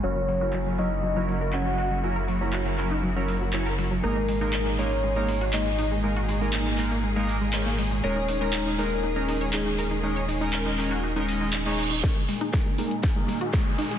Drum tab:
HH |--o---o---o---o-|--o---o---o---o-|--o---o---o---o-|--o---o---o---o-|
CP |----x-------x---|----x-x-----x---|----x-------x---|----x-x-----x---|
SD |----------------|----------------|----------------|----------------|
BD |----------------|----------------|----------------|----------------|

HH |--o---o---o---o-|--o---o---o---o-|xxoxx-oxx-oxx-ox|
CP |----x-------x---|----x-x-----x---|----------------|
SD |----------------|----------------|o---o---o---o---|
BD |----------------|----------------|o---o---o---o---|